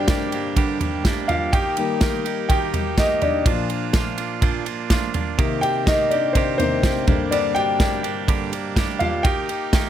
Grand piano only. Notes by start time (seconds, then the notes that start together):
Already playing: G2 D3 A#3 C4 D4 G4 C5 D5 G5
1.28 F4 F5
1.53 G4 G5
1.77 D#3 G3 A#3
2.49 G4 G5
2.98 D#4 D#5
3.22 D4 D5
3.46 A#2 F3 D4
5.38 C3 D#3 A#3
5.61 G4 G5
5.86 D#4 D#5
6.10 D4 D5
6.33 C4 C5
6.58 C3 D#3 A#3 C4 C5
7.07 G2 D3 A#3
7.31 D4 D5
7.55 G4 G5
8.99 F4 F5
9.23 G4 G5